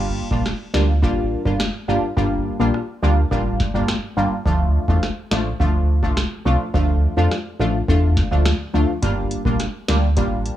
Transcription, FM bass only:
Already playing: G1
0.31 A#1
0.74 D2
1.03 A1
1.46 G1
1.88 G1
2.17 G1
2.60 A#1
3.03 D2
3.31 A1
3.74 G1
4.17 G1
4.46 D2
4.88 E2
5.31 A1
5.60 D2
6.03 C2
6.46 C2
6.74 D2
7.17 F2
7.60 A1
7.88 E2
8.31 D2
8.74 D2
9.03 G1
9.45 A#1
9.89 D2
10.17 A1

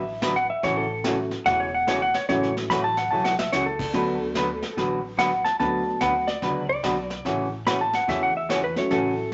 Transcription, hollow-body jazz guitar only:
0.22 D3 F#3 B3 F#4 B4
0.63 C#3 E3 A3 C#4 F#4
1.04 C#3 E3 A3 C#4 F#4
1.45 C#3 E3 A3 C#4 F#4
1.87 C#3 E3 A3 C#4 F#4
2.29 C#3 E3 A3 C#4 F#4
2.70 C#3 E3 A3 C#4 F#4
3.11 C#3 E3 A3 C#4 F#4
3.53 C#3 E3 A3 C#4 F#4
3.94 D3 F#3 B3 F#4 B4
4.36 D3 F#3 B3 F#4 B4
4.77 D3 F#3 B3 F#4 B4
5.17 D3 F#3 B3 F#4 B4
5.59 D3 F#3 B3 F#4 B4
6.01 D3 F#3 B3 F#4 B4
6.42 D3 F#3 B3 F#4 B4
6.83 D3 F#3 B3 F#4 B4
7.25 C#3 E3 A3 C#4 F#4
7.67 C#3 E3 A3 C#4 F#4
8.08 C#3 E3 A3 C#4 F#4
8.49 C#3 E3 A3 C#4 F#4
8.91 C#3 E3 A3 C#4 F#4

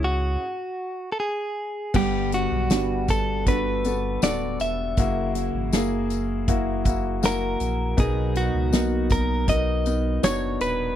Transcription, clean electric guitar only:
0.04 F#4
1.12 A4
1.20 G#4
1.96 G4
2.34 F#4
3.10 A4
3.48 B4
4.24 D5
4.61 E5
7.26 A#4
8.00 G#4
8.37 F#4
9.12 A#4
9.49 D#5
10.24 C#5
10.61 B4

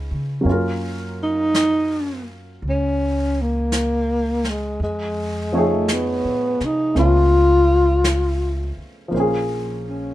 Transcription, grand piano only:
Already playing: G#3 C#4 D#4 F4 B4
0.41 F#3 A#3
0.46 C#4 F4
0.52 A#4
5.52 F3 A3 D#4 C#5
5.57 G#4
6.95 A3 B3 C#4 F4
9.08 F3 A#3
9.14 C#4 C5
9.20 G#4

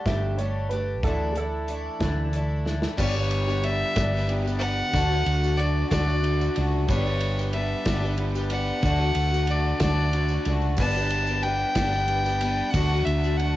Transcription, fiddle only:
2.98 C#5
3.64 E5
4.59 F#5
5.57 D5
5.89 D5
6.88 C#5
7.53 E5
8.50 F#5
9.51 D5
9.82 D5
10.79 A5
11.43 G5
12.71 F#5
13.04 E5
13.37 F#5

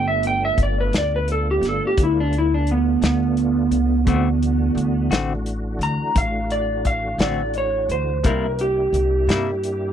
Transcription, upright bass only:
Already playing: G1
0.58 G1
0.92 D2
1.61 G1
1.97 D2
3.02 D2
3.71 C#2
4.07 D2
4.75 D2
5.10 A1
5.79 D2
6.15 A1
7.18 A1
7.89 D2
8.25 C2
8.93 C2
9.27 G2

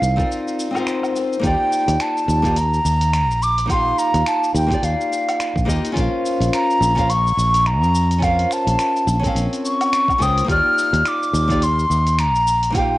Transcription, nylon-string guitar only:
Already playing: C4 D#4 F4 A#4 F5
0.16 C4 D#4 F4 A#4 D5
0.71 C4 D#4 F4
0.76 A#4 C5
1.39 A#3 D#4 F4
1.45 G4 D5
2.42 A#3 D#4 F4 G4 D5
3.66 A#3 D#4 F4
3.71 G4 F5
4.67 A#3 D#4 F4
4.72 G4 D5
5.65 A#3 D#4 F4 G4 D#5
5.92 C#4 F4 A#4
5.97 C5 F5
6.95 C#4 F4 A#4 C5 F5
8.18 C#4 F4 A#4
8.24 C5 F5
9.20 C#4 F4 A#4
9.25 C4 F5
10.18 C#4 F4 A#4 C5 G5
10.44 A#3 D#4 F4
10.50 G4 D5
11.47 A#3 D#4 F4 G4 D5
12.70 A#3 D#4 F4
12.76 G4 F5

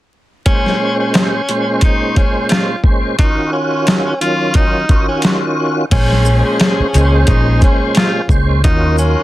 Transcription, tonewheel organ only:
0.45 A#2 G#3 C#4 C5
1.48 A#2 G#3 C#4 C5
2.83 A#2 G#3 C#4 C5
3.18 D#3 C#4 F4 F#4
4.20 D#3 F#3 C#4 F4
4.89 D#3 C#4 F4 F#4
5.91 A#2 G#3 C#4 C5
6.94 A#2 G#3 C#4 C5
8.29 A#2 G#3 C#4 C5
8.63 D#3 C#4 F4 F#4

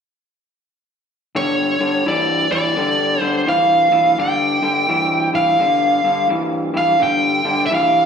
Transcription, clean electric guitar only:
1.35 G2 D3
1.81 G2 D3
2.06 G2 E3
2.52 G2 E3
2.77 G2 D3
3.21 G2 D3
3.47 G2 E3
3.91 G2 E3
4.18 G2 D3
4.62 G2 D3
4.89 G2 E3
5.33 G2 E3
5.59 G2 D3
6.04 G2 D3
6.29 G2 E3
6.74 G2 E3
7.00 G2 D3
7.45 G2 D3
7.71 G2 E3

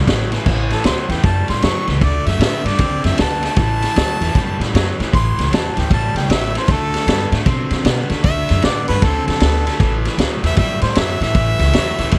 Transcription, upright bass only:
0.07 A1
0.46 A1
0.85 D2
1.09 E2
1.24 F#2
1.49 A2
1.63 F#2
1.88 C#2
2.01 D2
2.26 F#2
2.39 A2
2.64 G2
2.79 D2
3.04 F#2
3.19 D2
3.57 A1
3.97 D2
4.21 E2
4.35 F#2
4.60 A2
4.74 F#2
5.00 A2
5.13 A1
5.38 C#2
5.52 E2
5.77 D2
5.90 A1
6.15 C#2
6.29 A1
6.68 D2
7.07 G2
7.32 A2
7.46 B2
7.71 D3
7.85 B2
8.10 D3
8.24 D2
8.50 F#2
8.64 A2
8.89 G2
9.02 D2
9.28 F#2
9.41 D2
9.80 A1
10.18 D2
10.43 E2
10.57 F#2
10.82 A2
10.96 F#2
11.20 A2
11.35 A1
11.59 C#2
11.74 E2
11.99 D2
12.13 A1

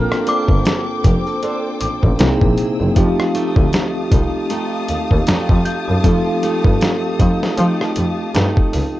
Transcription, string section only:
Already playing: A4 C5 G5 D6
2.20 G#4 E6
2.96 G4 F5 A5 D#6

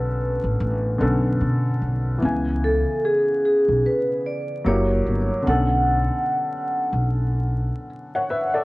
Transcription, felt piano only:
Already playing: D3 B3 C#4 A4
0.98 D3 B3 C#4 A4
2.18 E3 B3
2.23 C#3 G#5
4.64 F#3 A#3 E4 G4
5.42 D3 B3
5.47 C#4 A4
8.15 C#5 F#5
8.30 B4 E5
8.54 A4 D5

